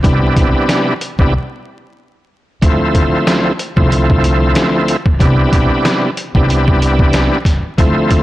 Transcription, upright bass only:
0.04 0.31 C2 loud
0.37 0.51 B1 medium
1.19 1.32 C2 medium
2.62 3.15 D2 loud
3.77 4.52 C2 medium
5.20 5.47 C2 loud
5.53 5.68 B1 medium
6.35 7.28 C2 medium
7.78 8.23 D2 loud

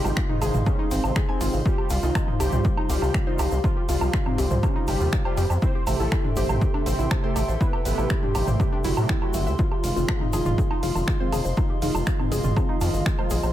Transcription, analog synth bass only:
0.05 0.12 G#1 medium
0.42 0.50 G#1 loud
0.54 0.62 G#1 medium
0.91 0.99 G#1 loud
1.04 1.12 G#1 medium
1.41 1.49 G#1 loud
1.53 1.61 G#1 medium
1.90 1.98 C2 loud
2.03 2.11 C2 medium
2.40 2.48 C2 loud
2.53 2.60 C2 medium
2.89 2.97 C2 medium
3.02 3.10 C2 medium
3.39 3.47 C2 medium
3.52 3.59 C2 medium
3.89 3.97 C2 medium
4.01 4.09 C2 medium
4.38 4.46 C2 loud
4.51 4.59 C2 medium
4.88 4.96 G1 medium
5.00 5.08 D#2 medium
5.37 5.45 F2 medium
5.50 5.58 F2 medium
5.87 5.95 A1 loud
6.00 6.07 A1 medium
6.37 6.45 A1 loud
6.49 6.57 A1 medium
6.86 6.94 A1 medium
6.99 7.07 A1 medium
7.36 7.44 A1 loud
7.48 7.56 A1 medium
7.86 7.93 A1 loud
7.98 8.06 A1 medium
8.35 8.43 A1 loud
8.48 8.55 A1 medium
8.85 8.93 G1 loud
8.97 9.05 A2 medium
9.34 9.48 G1 medium
9.47 9.54 D2 medium
9.84 9.92 F1 loud
9.96 10.04 F1 medium
10.33 10.41 F1 loud
10.46 10.54 F1 medium
10.83 10.91 F1 medium
10.95 11.03 F1 medium
11.33 11.40 F1 loud
11.45 11.53 F1 medium
11.82 11.90 F1 loud
11.94 12.02 F1 medium
12.31 12.40 F1 loud
12.44 12.52 F1 medium
12.81 12.89 F2 medium
12.94 13.01 G1 medium
13.31 13.39 A#1 medium
13.43 13.51 A#1 medium

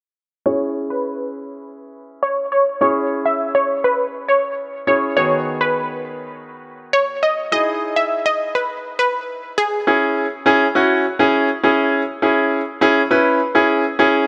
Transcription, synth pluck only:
0.46 0.58 C#5 medium
0.90 1.32 B4 medium
2.23 2.34 C#5 medium
2.52 2.63 C#5 medium
2.81 2.93 C#5 medium
3.26 3.37 E5 medium
3.55 3.66 C#5 medium
3.84 3.96 B4 medium
4.29 4.51 C#5 medium
4.87 4.99 C#5 medium
5.17 5.28 C#5 medium
5.61 6.02 B4 medium
6.93 7.05 C#5 medium
7.23 7.34 D#5 medium
7.52 7.64 D#5 medium
7.96 8.08 E5 medium
8.26 8.37 D#5 medium
8.55 8.66 B4 medium
8.99 9.22 B4 medium
9.58 9.69 G#4 medium

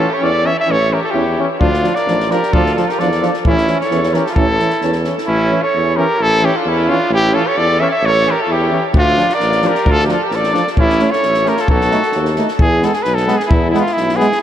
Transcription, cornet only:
0.00 0.15 A4 medium
0.13 0.25 C#5 medium
0.23 0.48 D5 loud
0.46 0.58 E5 loud
0.60 0.73 E5 loud
0.72 0.95 C#5 loud
0.93 1.03 A#4 medium
1.03 1.12 A4 medium
1.11 1.48 G4 medium
1.60 1.97 F4 loud
1.95 2.33 D5 loud
2.31 2.55 A#4 medium
2.53 2.75 A4 loud
2.75 2.89 A4 medium
2.88 3.01 A#4 medium
2.99 3.34 D5 medium
3.46 3.78 E4 loud
3.81 4.15 C#5 medium
4.14 4.27 A#4 medium
4.25 4.34 A4 medium
4.34 5.00 A4 loud
5.26 5.64 E4 loud
5.62 5.98 C#5 medium
5.97 6.24 A#4 loud
6.22 6.46 A4 loud
6.45 6.58 G4 medium
6.56 6.70 F4 medium
6.69 6.91 E4 loud
6.90 7.12 F4 medium
7.14 7.36 G4 loud
7.34 7.49 A4 loud
7.48 7.59 C#5 medium
7.57 7.82 D5 loud
7.80 7.90 E5 medium
7.91 8.07 E5 loud
8.06 8.32 C#5 loud
8.31 8.42 A#4 medium
8.41 8.54 A4 medium
8.53 8.85 G4 medium
8.98 9.36 F4 loud
9.34 9.69 D5 loud
9.67 9.93 A#4 medium
9.92 10.07 A4 loud
10.07 10.13 A#4 medium
10.12 10.29 A4 medium
10.27 10.37 A#4 medium
10.36 10.68 D5 medium
10.80 11.13 E4 loud
11.11 11.50 C#5 medium
11.49 11.62 A#4 medium
11.61 11.69 A4 medium
11.70 12.34 A4 loud
12.59 12.87 G#4 loud
12.85 12.96 A4 medium
12.94 13.04 G#4 medium
13.03 13.16 B4 medium
13.15 13.39 A4 medium
13.37 13.45 G#4 medium
13.45 13.69 E4 loud
13.45 13.49 G#4 medium
13.70 13.81 E4 medium
13.80 13.94 F4 medium
13.93 14.18 E4 medium
14.17 14.40 G#4 medium

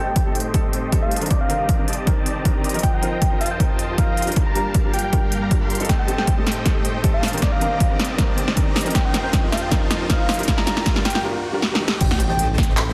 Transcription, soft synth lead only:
0.07 0.23 G5 medium
1.02 1.19 F5 medium
1.31 1.39 D5 medium
1.41 1.94 F5 medium
2.83 2.91 G5 medium
2.94 3.10 G5 medium
3.13 3.29 G5 medium
3.41 3.49 F5 medium
3.51 3.68 G5 medium
3.98 4.27 F5 loud
4.46 4.63 A#5 medium
4.93 5.02 G5 medium
5.04 5.10 G5 medium
5.13 5.19 G5 medium
5.89 5.97 G5 medium
5.99 6.16 G5 medium
6.18 6.35 G5 medium
7.14 7.31 F5 medium
7.42 7.50 D5 medium
7.52 8.06 F5 loud
8.95 9.03 G5 medium
9.05 9.22 G5 medium
9.24 9.41 G5 loud
9.52 9.60 F5 medium
9.62 9.79 G5 medium
10.10 10.39 F5 loud
10.58 10.74 A#5 medium
11.05 11.13 G5 loud
11.15 11.21 G5 medium
12.01 12.09 G5 medium
12.11 12.27 G5 medium
12.30 12.47 G5 loud

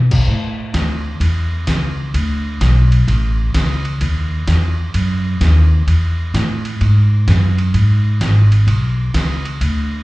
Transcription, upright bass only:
0.00 0.26 B2 medium
0.28 0.73 A2 medium
0.74 1.19 D2 medium
1.20 1.66 E2 medium
1.67 2.13 C#2 medium
2.14 2.59 D2 medium
2.61 3.06 B1 medium
3.08 3.53 A1 medium
3.55 4.00 C#2 medium
4.01 4.46 D#2 medium
4.48 4.93 E2 medium
4.94 5.39 F#2 medium
5.41 5.86 D#2 medium
5.87 6.33 E2 medium
6.34 6.79 A2 medium
6.81 7.26 G#2 medium
7.28 7.73 F#2 medium
7.74 8.20 G#2 medium
8.21 8.66 G#1 medium
8.67 9.13 B1 medium
9.14 9.60 C#2 medium
9.61 10.03 D2 medium

